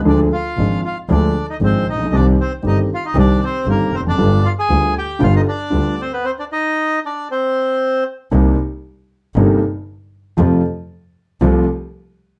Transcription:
<<
  \new Staff \with { instrumentName = "Bandoneon" } { \time 4/4 \key c \minor \tempo 4 = 116 <d' d''>8 <f' f''>4 <f' f''>8 <d' d''>8. <ees' ees''>16 <c' c''>8 <ees' ees''>8 | <d' d''>8 <c' c''>8 <ees' ees''>8 <f' f''>16 <ees' ees''>16 <d' d''>8 <c' c''>8 <bes bes'>8 <c' c''>16 <d' d''>16~ | <d' d''>8 <f' f''>16 <aes' aes''>8. <g' g''>8 <f' f''>16 <ees' ees''>16 <d' d''>4 <c' c''>16 <b b'>16 | <c' c''>16 <d' d''>16 <ees' ees''>4 <d' d''>8 <c' c''>4. r8 |
r1 | r1 | }
  \new Staff \with { instrumentName = "Grand piano" } { \clef bass \time 4/4 \key c \minor <d, d f aes d' aes'>8 r8 <aes,, aes, f aes d' aes'>8 r8 <d, d f aes d' aes'>8 r8 <aes,, aes, f aes d' aes'>8 r32 a,,32 bes,,32 b,,32 | <c, c ees g c' g'>8 r8 <g,, g, ees g c' g'>8 r8 <c, c ees g c' g'>8 r8 <g,, g, ees g c' g'>8 r32 e,32 f,32 fis,32 | <g,, g, d g b f'>8 r8 <d, d g b f'>8 r8 <g,, g, d g b f'>8 r8 <d, d g b f'>8 r8 | r1 |
<c, c g bes ees'>8 r4. <g,, g, c g bes ees'>8 r4. | <f, c f a f'>8 r4. <c, c f a f'>8 r4. | }
  \new Staff \with { instrumentName = "Double bass" } { \clef bass \time 4/4 \key c \minor d,8 r8 aes,,8 r8 d,8 r8 aes,,8 bes,,8 | c,8 r8 g,,8 r8 c,8 r8 g,,8 f,,8 | g,,8 r8 d,8 r8 g,,8 r8 d,8 r8 | r1 |
c,8 r4. g,,8 r4. | f,8 r4. c,8 r4. | }
>>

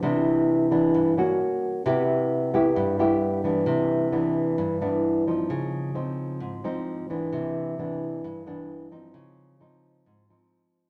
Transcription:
\new Staff \with { instrumentName = "Nylon-string guitar" } { \time 4/4 \key c \major \tempo 4 = 132 << { <e b d'>4. <e b d'>4 <bes des' fis'>4. | <b e' g'>4. <b e' g'>4 <b e' g'>4 <e b d'>8~ | <e b d'>4 <e b d'>4. <e b d'>4 <f c' ees'>8~ | <f c' ees'>4 <f c' ees'>4. <f c' ees'>4 <e b d'>8~ |
<e b d'>4 <e b d'>4. <e b d'>4 <f c' ees'>8~ | <f c' ees'>4 <f c' ees'>4. <f c' ees'>4. | } \\ { c2 g,4 r4 | c2 g,2 | c2 g,2 | des2 aes,2 |
c2 g,2 | des2 aes,2 | } >> }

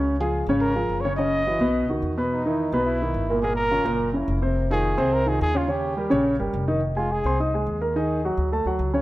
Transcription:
<<
  \new Staff \with { instrumentName = "Trumpet" } { \time 4/4 \key ees \mixolydian \tempo 4 = 213 r8 aes'4 r8 bes'4. des''8 | ees''2. r4 | ees'2 e'2 | aes'8 bes'2 r4. |
r8 aes'4. bes'8 aes'8 aes'8 f'8 | g'2 r2 | r8 f'8 aes'4 r4. f'8 | aes'4 r2. | }
  \new Staff \with { instrumentName = "Grand piano" } { \time 4/4 \key ees \mixolydian <des des' des''>8 <f f' aes'>4 <des des' des''>4 <f f' aes'>4 <des des' des''>8 | <des des' des''>4 <fes fes' ges'>8 <ces ces' ces''>4 <dis dis' fis'>4 <b, b b'>8~ | <b, b b'>8 <ees ees' e'>4 <b, b b'>4 <ees ees' e'>4 <bes, bes bes'>8 | <bes, bes bes'>4 <des des' f'>8 <bes, bes bes'>4 <des des' fes'>4 <c c' c''>8~ |
<c c' c''>8 <ees ees' f'>4 <c c' c''>4 <ees ees' f'>4 <des des' des''>8 | <des des' des''>4 <g g' bes'>8 <des des' des''>4 <g g' bes'>4 <ees ees' ees''>8 | r8 <aes aes' aes''>4 <c' c'' c'''>8 <ees' ees'' ees'''>8 <aes aes' aes''>4 <bes bes' bes''>8 | <ees ees' ees''>4 <ges ges' ges''>4 <a a' a''>8 <fis fis' fis''>4 <des des' des''>8 | }
  \new Staff \with { instrumentName = "Upright bass" } { \clef bass \time 4/4 \key ees \mixolydian des,4. aes,,4. ges,,4~ | ges,,4. ces,4 des,8 fes,4~ | fes,4. b,,4. g,,4~ | g,,4. ges,,4. f,,4~ |
f,,4. c,4. ees,4~ | ees,4. bes,,4 g,,8 f,,4~ | f,,4. c,4. ees,4~ | ees,4. d,4 d,8 des,4 | }
>>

